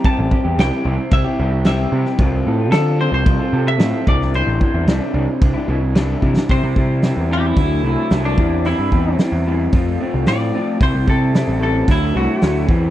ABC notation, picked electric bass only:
X:1
M:4/4
L:1/16
Q:1/4=112
K:C
V:1 name="Picked electric bass" clef=bass
z A,,, z E,, C,, z C,, z C,, z C,,4 C, z | C,,2 A,,2 D,3 C,, C,, z C,2 A,, z C,,2- | C,, A,,, z E,, C,, z C,, z C,, z C,,4 C, z | C, C, C,3 E,,3 D,,2 C,, z C,,2 E,,2- |
E,, G,, E,,2 z E,,3 F,,2 z C,, A,,2 z2 | C,, C,, C,3 A,,,3 D,,2 C,, z D,,2 E,,2 |]